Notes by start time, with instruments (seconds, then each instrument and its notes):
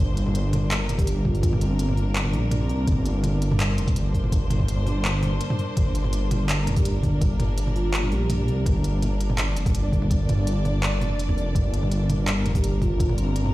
Already playing: string section G3 A#3 D4 C5
0.00 detuned saw bass G1
0.17 closed hi-hat
0.26 mid tom
0.35 closed hi-hat
0.53 closed hi-hat, mid tom
0.71 clap, closed hi-hat
0.79 string section A#4
0.89 detuned saw bass F1, closed hi-hat, mid tom
0.98 vibraphone G4, kick, open hi-hat
1.07 detuned saw bass G1, closed hi-hat
1.25 vibraphone F4, kick, mid tom
1.35 vibraphone F4, open hi-hat
1.43 kick, closed hi-hat
1.53 mid tom
1.61 detuned saw bass G1, vibraphone C4, closed hi-hat
1.71 vibraphone C4
1.79 closed hi-hat
1.89 mid tom
1.97 open hi-hat
2.16 clap, open hi-hat
2.25 mid tom
2.33 detuned saw bass A#1, open hi-hat
2.51 closed hi-hat, mid tom
2.61 vibraphone C4
2.69 detuned saw bass C2, open hi-hat
2.87 detuned saw bass G1, kick, closed hi-hat
2.92 mid tom
3.06 closed hi-hat
3.24 closed hi-hat, mid tom
3.42 closed hi-hat
3.51 mid tom
3.60 clap, closed hi-hat
3.69 string section C5
3.78 detuned saw bass F1, closed hi-hat
3.87 kick, mid tom, open hi-hat
3.96 detuned saw bass G1, closed hi-hat
4.14 kick, open hi-hat
4.24 mid tom
4.32 kick, closed hi-hat
4.50 detuned saw bass G1, closed hi-hat, mid tom
4.60 kick
4.68 closed hi-hat
4.87 mid tom, open hi-hat
5.05 clap, open hi-hat
5.23 detuned saw bass G1, mid tom, open hi-hat
5.41 closed hi-hat
5.50 mid tom
5.59 open hi-hat
5.77 detuned saw bass G1, kick, closed hi-hat
5.95 closed hi-hat
6.04 mid tom
6.13 closed hi-hat
6.31 closed hi-hat, mid tom
6.49 clap, closed hi-hat
6.58 string section A#4
6.67 detuned saw bass F1, closed hi-hat, mid tom
6.76 vibraphone G4, kick, open hi-hat
6.85 detuned saw bass G1, closed hi-hat
7.03 kick, mid tom, open hi-hat
7.21 kick, closed hi-hat
7.39 detuned saw bass G1, closed hi-hat, mid tom
7.58 closed hi-hat
7.67 mid tom
7.75 vibraphone F4, open hi-hat
7.94 clap, open hi-hat
8.03 mid tom
8.12 detuned saw bass A#1, vibraphone G4, open hi-hat
8.30 closed hi-hat, mid tom
8.48 detuned saw bass C2, open hi-hat
8.66 detuned saw bass G1, kick, closed hi-hat, mid tom
8.84 closed hi-hat
9.02 closed hi-hat, mid tom
9.21 closed hi-hat
9.30 mid tom
9.38 clap, closed hi-hat
9.47 string section D5
9.56 detuned saw bass F1, closed hi-hat
9.66 kick, mid tom, open hi-hat
9.74 detuned saw bass G1, closed hi-hat
9.92 kick, open hi-hat
10.02 mid tom
10.11 kick, closed hi-hat
10.29 detuned saw bass G1, closed hi-hat, mid tom
10.47 closed hi-hat
10.65 mid tom, open hi-hat
10.83 clap, open hi-hat
11.01 detuned saw bass F1, mid tom, open hi-hat
11.19 closed hi-hat
11.29 mid tom
11.38 open hi-hat
11.55 detuned saw bass G1, kick, closed hi-hat
11.74 closed hi-hat
11.83 mid tom
11.91 closed hi-hat
12.10 closed hi-hat, mid tom
12.28 clap, closed hi-hat
12.37 string section A#4
12.46 detuned saw bass F1, closed hi-hat, mid tom
12.55 vibraphone G4, kick, open hi-hat
12.64 detuned saw bass G1, closed hi-hat
12.82 vibraphone F4, kick, mid tom, open hi-hat
12.91 vibraphone F4
13.00 kick, closed hi-hat
13.09 mid tom
13.18 detuned saw bass G1, vibraphone C4, closed hi-hat
13.27 vibraphone C4
13.36 closed hi-hat
13.46 mid tom